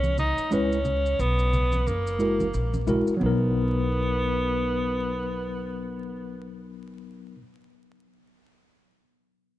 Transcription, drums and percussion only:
0.04 high conga medium
0.04 maracas soft
0.18 low conga medium
0.18 maracas soft
0.38 maracas soft
0.52 maracas medium
0.72 maracas soft
0.85 low conga medium
0.85 maracas soft
1.06 maracas soft
1.19 maracas medium
1.39 maracas soft
1.53 low conga medium
1.53 maracas soft
1.72 high conga medium
1.72 maracas soft
1.87 high conga soft
1.87 maracas medium
2.07 maracas medium
2.20 maracas soft
2.40 high conga medium
2.40 maracas soft
2.54 maracas medium
2.74 high conga medium
2.74 maracas soft
2.87 low conga medium
2.87 maracas soft
3.07 maracas soft
3.21 high conga medium

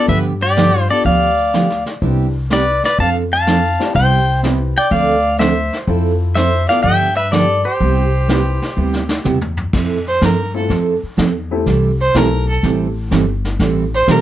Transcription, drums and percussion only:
0.08 brush sweep soft
0.08 kick soft
0.57 snare medium
0.57 hi-hat pedal medium
1.05 brush sweep medium
1.05 kick soft
1.54 snare medium
1.54 hi-hat pedal medium
1.70 snare soft
1.86 snare soft
2.02 brush sweep soft
2.02 kick soft
2.50 snare medium
2.50 hi-hat pedal medium
2.83 snare soft
2.99 brush sweep soft
2.99 kick soft
3.47 snare medium
3.47 hi-hat pedal medium
3.80 snare soft
3.95 brush sweep medium
3.95 kick soft
4.43 snare medium
4.43 hi-hat pedal medium
4.91 brush sweep soft
4.91 kick soft
5.40 snare medium
5.40 hi-hat pedal medium
5.73 snare soft
5.88 brush sweep medium
5.88 kick soft
6.36 snare medium
6.36 hi-hat pedal medium
6.69 snare soft
6.84 brush sweep medium
6.84 kick soft
7.32 snare medium
7.32 hi-hat pedal soft
7.81 brush sweep soft
7.81 kick soft
8.29 snare medium
8.29 hi-hat pedal medium
8.62 snare soft
8.93 snare soft
9.09 snare medium
9.25 hi-hat pedal medium
9.25 mid tom medium
9.41 floor tom medium
9.57 floor tom medium
9.73 brush sweep medium
9.73 kick medium
9.73 snare soft
9.73 crash medium
10.22 kick soft
10.22 snare medium
10.22 hi-hat pedal medium
10.70 brush sweep soft
10.70 kick soft
10.70 snare soft
11.18 kick soft
11.18 snare medium
11.18 hi-hat pedal soft
11.66 brush sweep medium
11.66 kick soft
11.66 snare soft
12.15 kick soft
12.15 snare medium
12.15 hi-hat pedal medium
12.63 brush sweep soft
12.63 kick soft
12.63 snare soft
13.11 kick soft
13.11 snare medium
13.11 hi-hat pedal medium
13.45 snare soft
13.59 brush sweep medium
13.59 kick soft
13.59 snare soft
14.08 kick soft
14.08 snare medium
14.08 hi-hat pedal medium

